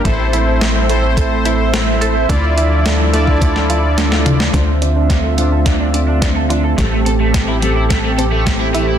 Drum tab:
HH |x-x-x-x-x-x-x-x-|x-x-x-x-x-x-x-x-|x-x-x-x-x-x-x-x-|x-x-x-x-x-x-x-x-|
SD |----o-------o---|----o----o--oo-o|o---o---o---o---|o---o---o---o---|
T2 |----------------|--------------o-|----------------|----------------|
BD |o-------o-------|o------oo-------|o---o---o---o---|o---o---o---o---|